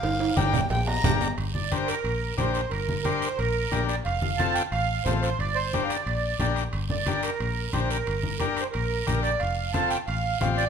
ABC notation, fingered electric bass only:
X:1
M:4/4
L:1/8
Q:1/4=179
K:Gm
V:1 name="Fingered electric bass" clef=bass
G,,,2 G,,,2 B,,,2 G,,,2 | G,,,4 B,,,2 B,,,2 | G,,,4 B,,,2 B,,,2 | F,,,4 A,,,2 A,,,2 |
G,,,4 B,,,2 B,,,2 | G,,,4 B,,,2 B,,,2 | G,,,4 B,,,2 B,,,2 | F,,,4 A,,,2 A,,,2 |]